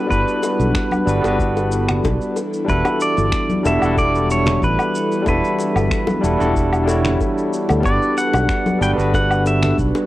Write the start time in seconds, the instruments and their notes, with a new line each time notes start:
Already playing: tine electric piano G3 B3 D4 F#4 B4, analog synth pad G3 D4 E4 A4 B4
0.07 fingered electric bass G1, tine electric piano G3 B3 D4, pedal steel guitar B4, kick
0.11 tine electric piano F#4 B4, shaker
0.28 shaker
0.43 high bongo, shaker
0.60 fingered electric bass B1, shaker
0.75 finger snap, kick, high bongo, shaker
0.91 high conga, low woodblock, shaker
1.05 fingered electric bass G1, tine electric piano G3 B3 D4 F#4 B4, shaker
1.21 fingered electric bass G1, tine electric piano G3 B3 D4, high bongo
1.25 tine electric piano F#4 B4, shaker
1.39 kick, shaker
1.57 high bongo, shaker
1.72 shaker
1.89 finger snap, low conga, low woodblock, shaker
2.04 fingered electric bass B1, kick, high bongo, shaker
2.22 shaker
2.36 analog synth pad E3 G3 B3, high bongo, shaker
2.54 shaker
2.64 fingered electric bass E1, tine electric piano G3 D4 E4, kick
2.69 tine electric piano F#4 A4, pedal steel guitar B4, shaker
2.85 high bongo, low woodblock, shaker
3.01 pedal steel guitar D5, shaker
3.17 fingered electric bass G1, high bongo, shaker
3.32 finger snap, kick, shaker
3.50 high conga, shaker
3.63 fingered electric bass E1, tine electric piano G3 D4 E4 F#4 A4, pedal steel guitar E5, high bongo, shaker
3.78 tine electric piano G3 D4 E4
3.82 fingered electric bass E1, tine electric piano F#4 A4, low woodblock, shaker
3.97 pedal steel guitar D5, kick, high bongo, shaker
4.15 shaker
4.31 pedal steel guitar C#5, shaker
4.46 finger snap, high bongo, low conga, shaker
4.62 fingered electric bass A1, pedal steel guitar B4, kick, shaker
4.79 high bongo, low woodblock, shaker
4.95 shaker
5.12 shaker
5.22 tine electric piano G3 D4 E4, high bongo
5.26 fingered electric bass E1, tine electric piano F#4 A4, pedal steel guitar B4, kick, shaker
5.45 shaker
5.59 high bongo, shaker
5.76 fingered electric bass G1, low woodblock, shaker
5.91 finger snap, kick, shaker
6.07 high bongo, high conga, shaker
6.21 fingered electric bass E1, tine electric piano G3 D4 E4 F#4 A4, shaker
6.38 fingered electric bass E1, tine electric piano G3 D4 E4 F#4 A4, high bongo, shaker
6.55 kick, shaker
6.73 low woodblock, shaker
6.83 tine electric piano G3 D4 E4
6.88 tine electric piano F#4 C#5, high bongo, shaker
7.05 finger snap, low conga, shaker
7.20 kick, high bongo, shaker
7.38 shaker
7.53 shaker
7.69 fingered electric bass D2, high bongo, low woodblock, shaker
7.80 tine electric piano G3 B3 D4, high bongo
7.85 fingered electric bass G1, analog synth pad G3 B4, tine electric piano F#4 B4, pedal steel guitar D5, kick, shaker
8.03 shaker
8.18 pedal steel guitar F#5, shaker
8.33 fingered electric bass B1, high bongo, low woodblock, shaker
8.49 finger snap, kick, shaker
8.66 high bongo, high conga, shaker
8.78 fingered electric bass G1, tine electric piano G3 B3 D4 F#4 B4, pedal steel guitar G5, shaker
8.93 tine electric piano G3 B3 D4
8.98 fingered electric bass G1, tine electric piano F#4 B4, shaker
9.13 pedal steel guitar F#5, kick, high bongo, shaker
9.31 low woodblock, shaker
9.46 pedal steel guitar E5, high bongo, shaker
9.62 finger snap, low conga, shaker
9.78 fingered electric bass B1, kick, shaker
9.95 high bongo, shaker